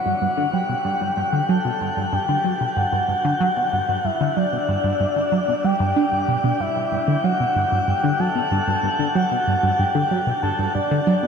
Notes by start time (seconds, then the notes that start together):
Already playing: F#5
0.06 G2
0.22 G2
0.37 D3
0.53 F#3 G5
0.69 B2
0.85 G2
1.01 G2
1.17 G2
1.33 D3
1.49 F#3 A5
1.65 B2
1.81 G2
1.97 G2
2.13 G2 G5
2.29 D3
2.44 F#3
2.61 B2
2.77 G2 F#5
2.93 G2
3.08 G2
3.25 D3
3.40 F#3
3.57 B2
3.73 G2
3.89 G2
4.05 G2 E5
4.21 D3
4.36 F#3 D5
4.53 B2
4.68 G2
4.84 G2
5.00 G2
5.16 D3
5.32 F#3
5.48 B2
5.64 G3 G5
5.80 G2
5.96 D4
6.12 G2
6.28 B2
6.44 B2
6.60 G2 E5
6.76 G2
6.92 G2
7.08 D3
7.24 F#3 F#5
7.40 B2
7.56 G2
7.72 G2
7.88 G2 G5
8.04 D3
8.20 F#3 A5
8.35 B2
8.51 G2
8.68 G2
8.83 G2
8.99 D3
9.15 F#3 F#5
9.32 B2
9.48 G2
9.63 G2
9.79 G2 G5
9.95 D3
10.11 F#3
10.27 B2
10.43 G2 A5
10.59 G2
10.75 G2 D5
10.91 D3
11.07 F#3
11.23 B2